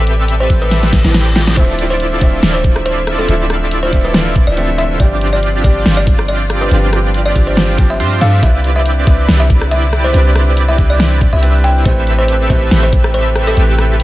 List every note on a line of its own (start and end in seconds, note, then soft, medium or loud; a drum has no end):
0.00 0.48 A1 medium
0.00 1.54 C3 medium
0.00 0.48 C4 medium
0.00 0.47 G4 medium
0.00 1.54 G4 medium
0.00 0.12 A4 loud
0.00 0.47 A4 medium
0.00 0.47 B4 medium
0.00 1.53 D5 medium
0.00 0.47 E5 loud
0.07 closed hi-hat medium
0.28 closed hi-hat medium
0.40 0.58 C5 medium
0.50 1.02 A1 loud
0.50 1.02 C4 medium
0.50 1.02 G4 medium
0.50 1.02 A4 medium
0.50 1.02 B4 medium
0.50 1.02 E5 medium
0.50 kick medium
0.50 closed hi-hat medium
0.62 0.80 B4 medium
0.71 snare medium
0.71 closed hi-hat medium
0.71 reverse cymbal medium
0.83 snare medium
0.93 kick loud
0.93 snare medium
0.93 closed hi-hat medium
1.04 1.55 A1 loud
1.04 1.55 C4 medium
1.04 1.32 E4 medium
1.04 1.55 G4 medium
1.04 1.55 A4 medium
1.04 1.55 B4 medium
1.04 1.55 G5 medium
1.04 snare medium
1.14 snare medium
1.14 closed hi-hat medium
1.36 1.54 F4 medium
1.36 snare loud
1.36 closed hi-hat medium
1.47 snare medium
1.55 2.19 D1 medium
1.55 8.39 C3 medium
1.55 2.18 D3 medium
1.55 2.19 F3 medium
1.55 4.97 F3 medium
1.55 2.19 A3 medium
1.55 2.19 C4 loud
1.55 2.20 C4 medium
1.55 2.19 E4 medium
1.55 2.19 F4 medium
1.55 2.19 A4 medium
1.55 1.85 C5 loud
1.55 2.19 D5 loud
1.55 4.96 E5 medium
1.55 kick loud
1.55 closed hi-hat medium
1.55 crash medium
1.59 2.20 E5 loud
1.79 closed hi-hat medium
1.90 2.17 C5 medium
2.00 closed hi-hat medium
2.19 2.41 D1 loud
2.19 3.25 D3 medium
2.19 3.26 F3 medium
2.19 3.26 A3 medium
2.19 2.40 C4 medium
2.19 3.27 C4 medium
2.19 2.40 E4 medium
2.19 2.40 F4 medium
2.19 2.40 A4 medium
2.19 2.50 C5 medium
2.19 2.40 D5 loud
2.19 3.27 E5 medium
2.19 kick loud
2.19 closed hi-hat medium
2.43 3.27 D1 loud
2.43 3.26 C4 medium
2.43 3.26 E4 medium
2.43 3.26 F4 medium
2.43 3.26 A4 medium
2.43 3.26 D5 loud
2.43 snare loud
2.43 closed hi-hat medium
2.54 2.81 C5 medium
2.64 kick loud
2.64 closed hi-hat medium
2.76 cross-stick medium
2.86 3.14 C5 medium
2.86 closed hi-hat medium
3.07 cross-stick medium
3.07 closed hi-hat medium
3.19 3.55 A4 medium
3.27 3.91 D1 loud
3.27 3.89 D3 medium
3.27 3.90 F3 medium
3.27 3.90 A3 medium
3.27 3.90 C4 loud
3.27 3.91 C4 medium
3.27 3.90 E4 medium
3.27 3.90 F4 medium
3.27 3.90 A4 medium
3.27 3.90 D5 loud
3.27 3.91 E5 medium
3.27 closed hi-hat medium
3.50 cross-stick medium
3.50 closed hi-hat medium
3.71 closed hi-hat medium
3.83 4.01 C5 medium
3.91 4.45 D1 loud
3.91 4.54 D3 medium
3.91 4.54 F3 medium
3.91 4.55 A3 medium
3.91 4.44 C4 medium
3.91 4.55 C4 medium
3.91 4.44 E4 medium
3.91 4.44 F4 medium
3.91 4.44 A4 medium
3.91 4.44 D5 medium
3.91 kick medium
3.91 closed hi-hat medium
3.95 4.56 E5 medium
4.04 4.23 B4 medium
4.14 snare loud
4.14 closed hi-hat medium
4.36 kick loud
4.36 closed hi-hat medium
4.47 4.98 D1 loud
4.47 4.98 C4 medium
4.47 4.98 E4 medium
4.47 4.98 F4 medium
4.47 4.98 A4 medium
4.47 4.74 D5 medium
4.47 4.98 E5 medium
4.56 4.97 D3 loud
4.56 4.96 F3 medium
4.56 4.98 A3 medium
4.56 4.98 C4 medium
4.56 4.98 E5 loud
4.56 closed hi-hat medium
4.78 4.97 E5 medium
4.78 closed hi-hat medium
4.98 5.62 G1 loud
4.98 5.61 F3 medium
4.98 5.61 G3 medium
4.98 8.39 G3 medium
4.98 5.62 C4 medium
4.98 5.62 C4 loud
4.98 5.62 D4 medium
4.98 8.39 F4 medium
4.98 5.62 F4 medium
4.98 5.62 G4 medium
4.98 5.63 G4 loud
4.98 5.28 D5 loud
4.98 5.62 D5 loud
4.98 kick loud
4.98 closed hi-hat medium
5.21 closed hi-hat medium
5.33 5.60 D5 loud
5.43 closed hi-hat medium
5.62 5.84 G1 loud
5.62 6.68 F3 medium
5.62 6.68 G3 medium
5.62 5.83 C4 medium
5.62 6.69 C4 medium
5.62 5.83 D4 medium
5.62 6.69 D4 medium
5.62 5.83 F4 medium
5.62 5.83 G4 medium
5.62 5.92 D5 medium
5.62 5.83 D5 medium
5.62 kick loud
5.62 closed hi-hat medium
5.66 6.70 G4 medium
5.86 6.69 G1 medium
5.86 6.69 C4 loud
5.86 6.69 D4 medium
5.86 6.69 F4 medium
5.86 6.69 G4 medium
5.86 6.69 D5 loud
5.86 snare loud
5.86 closed hi-hat medium
5.97 6.24 D5 loud
6.07 kick loud
6.07 closed hi-hat medium
6.19 cross-stick medium
6.28 6.57 D5 medium
6.28 closed hi-hat medium
6.50 cross-stick medium
6.50 closed hi-hat medium
6.61 6.98 B4 loud
6.69 7.34 G1 loud
6.69 7.32 F3 medium
6.69 7.33 G3 medium
6.69 7.33 C4 medium
6.69 7.33 C4 loud
6.69 7.33 D4 medium
6.69 7.34 D4 medium
6.69 7.33 F4 medium
6.69 7.33 G4 medium
6.69 7.33 D5 loud
6.69 closed hi-hat medium
6.73 7.34 G4 medium
6.93 cross-stick medium
6.93 closed hi-hat medium
7.14 closed hi-hat medium
7.26 7.44 D5 medium
7.34 8.01 G1 loud
7.34 7.76 F3 medium
7.34 7.76 G3 medium
7.34 7.76 C4 medium
7.34 7.87 C4 medium
7.34 7.87 D4 medium
7.34 7.77 D4 medium
7.34 7.87 F4 medium
7.34 7.87 G4 medium
7.34 7.77 G4 medium
7.34 7.87 D5 medium
7.34 kick medium
7.34 closed hi-hat medium
7.47 7.65 C5 medium
7.57 snare loud
7.57 closed hi-hat medium
7.77 7.83 F3 loud
7.77 7.84 G3 medium
7.77 7.84 C4 medium
7.77 7.84 D4 medium
7.77 7.85 G4 loud
7.77 kick loud
7.77 closed hi-hat medium
7.90 8.17 E5 medium
8.00 8.19 G2 loud
8.00 8.19 C4 loud
8.00 8.19 D4 medium
8.00 8.19 F4 medium
8.00 8.19 G4 medium
8.00 8.19 C5 loud
8.00 closed hi-hat medium
8.20 8.44 G2 loud
8.20 8.40 F3 loud
8.20 8.39 G3 medium
8.20 8.40 C4 medium
8.20 8.40 D4 medium
8.20 8.41 D4 medium
8.20 8.40 F4 medium
8.20 8.40 G4 medium
8.20 8.41 A4 loud
8.20 8.40 E5 loud
8.20 8.40 F5 medium
8.20 closed hi-hat medium
8.41 9.05 C2 loud
8.41 11.82 D3 medium
8.41 9.03 G3 medium
8.41 9.04 C4 medium
8.41 9.05 C4 loud
8.41 9.05 D4 medium
8.41 11.82 E4 medium
8.41 9.05 E4 medium
8.41 9.05 G4 loud
8.41 9.05 B4 medium
8.41 9.06 B4 medium
8.41 11.82 D5 medium
8.41 9.05 D5 loud
8.41 8.71 E5 loud
8.41 kick loud
8.41 closed hi-hat medium
8.64 closed hi-hat medium
8.76 9.03 E5 loud
8.86 closed hi-hat medium
9.05 9.27 C2 loud
9.05 10.10 G3 medium
9.05 10.11 C4 medium
9.05 9.26 C4 medium
9.05 10.12 D4 medium
9.05 9.26 E4 medium
9.05 10.12 E4 medium
9.05 9.26 G4 medium
9.05 9.26 B4 medium
9.05 10.13 B4 loud
9.05 9.26 D5 loud
9.05 9.35 E5 medium
9.05 kick loud
9.05 closed hi-hat medium
9.29 10.12 C2 medium
9.29 10.12 C4 loud
9.29 10.12 E4 medium
9.29 10.12 G4 medium
9.29 10.12 B4 medium
9.29 10.12 D5 loud
9.29 snare loud
9.29 closed hi-hat medium
9.40 9.67 E5 loud
9.50 kick loud
9.50 closed hi-hat medium
9.61 cross-stick medium
9.71 10.00 E5 medium
9.71 closed hi-hat medium
9.93 cross-stick medium
9.93 closed hi-hat medium
10.04 10.41 C5 loud
10.12 10.77 C2 medium
10.12 10.75 G3 medium
10.12 10.75 C4 medium
10.12 10.76 C4 loud
10.12 10.76 D4 medium
10.12 10.76 E4 medium
10.12 10.77 E4 medium
10.12 10.76 G4 medium
10.12 10.76 B4 medium
10.12 10.76 D5 loud
10.12 closed hi-hat medium
10.16 10.77 B4 medium
10.36 cross-stick medium
10.36 closed hi-hat medium
10.57 closed hi-hat medium
10.69 10.87 E5 medium
10.76 11.31 C2 loud
10.76 11.39 G3 medium
10.76 11.40 C4 medium
10.76 11.30 C4 medium
10.76 11.40 D4 medium
10.76 11.30 E4 medium
10.76 11.41 E4 medium
10.76 11.30 G4 medium
10.76 11.30 B4 medium
10.76 11.30 D5 medium
10.76 kick medium
10.76 closed hi-hat medium
10.80 11.41 B4 medium
10.90 11.08 D5 medium
11.00 snare loud
11.00 closed hi-hat medium
11.21 kick loud
11.21 closed hi-hat medium
11.33 11.84 C2 loud
11.33 11.83 C4 medium
11.33 11.83 E4 medium
11.33 11.83 G4 medium
11.33 11.83 B4 medium
11.33 11.60 E5 medium
11.33 11.83 E5 medium
11.42 11.83 G3 loud
11.42 11.83 C4 medium
11.42 11.83 D4 medium
11.42 11.83 E4 medium
11.42 11.84 B4 loud
11.42 closed hi-hat medium
11.64 11.83 G5 medium
11.64 closed hi-hat medium
11.83 12.48 A1 loud
11.83 14.03 C3 medium
11.83 12.46 A3 medium
11.83 12.47 C4 medium
11.83 12.47 C4 loud
11.83 12.47 E4 medium
11.83 12.47 G4 medium
11.83 14.03 G4 medium
11.83 12.48 G4 medium
11.83 12.47 A4 medium
11.83 14.03 B4 medium
11.83 12.47 B4 medium
11.83 12.14 C5 loud
11.83 12.47 E5 loud
11.83 kick loud
11.83 closed hi-hat medium
11.87 12.48 B4 loud
12.07 closed hi-hat medium
12.19 12.46 C5 loud
12.28 closed hi-hat medium
12.48 12.69 A1 loud
12.48 13.53 A3 medium
12.48 13.54 C4 medium
12.48 12.69 C4 medium
12.48 13.55 E4 medium
12.48 12.69 G4 medium
12.48 13.55 G4 medium
12.48 12.69 A4 medium
12.48 12.69 B4 medium
12.48 13.56 B4 loud
12.48 12.78 C5 medium
12.48 12.69 E5 loud
12.48 kick loud
12.48 closed hi-hat medium
12.71 13.55 A1 loud
12.71 13.55 C4 loud
12.71 13.55 G4 medium
12.71 13.55 A4 medium
12.71 13.55 B4 medium
12.71 13.55 E5 loud
12.71 snare loud
12.71 closed hi-hat medium
12.83 13.10 C5 loud
12.93 kick loud
12.93 closed hi-hat medium
13.04 cross-stick medium
13.14 13.42 C5 medium
13.14 closed hi-hat medium
13.36 cross-stick medium
13.36 closed hi-hat medium
13.47 13.84 A4 loud
13.55 14.03 A1 loud
13.55 14.03 A3 medium
13.55 14.03 C4 medium
13.55 14.03 C4 loud
13.55 14.03 E4 medium
13.55 14.03 G4 medium
13.55 14.03 A4 medium
13.55 14.03 B4 medium
13.55 14.03 E5 loud
13.55 closed hi-hat medium
13.59 14.03 B4 medium
13.79 cross-stick medium
13.79 closed hi-hat medium
14.00 closed hi-hat medium